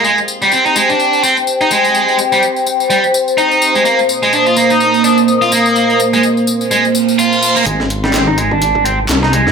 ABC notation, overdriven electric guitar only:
X:1
M:4/4
L:1/16
Q:"Swing 16ths" 1/4=126
K:Ablyd
V:1 name="Overdriven electric guitar"
A, z2 G, C E A, D3 C z2 E A,2- | A,2 z G, z4 G, z3 E3 A, | B, z2 A, D F B, E3 D z2 F B,2- | B,2 z A, z4 A, z3 F3 B, |
A, z2 G, C E A, D3 C z2 E A,2 |]